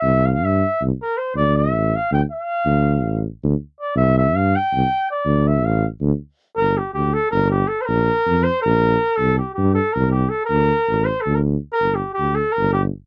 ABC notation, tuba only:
X:1
M:7/8
L:1/8
Q:1/4=160
K:Dm
V:1 name="Tuba" clef=bass
C,,2 G,,2 C,, z2 | D,,2 A,,,2 D,, z2 | D,,2 A,,,2 D,, z2 | C,,2 G,,2 C,, z2 |
D,,2 A,,,2 D,, z2 | [K:Gm] G,,,2 D,,2 G,,,3 | B,,,2 F,,2 B,,,3 | C,,2 G,,2 C,,3 |
D,,2 A,,,2 D,,3 | G,,,2 D,,2 G,,,3 |]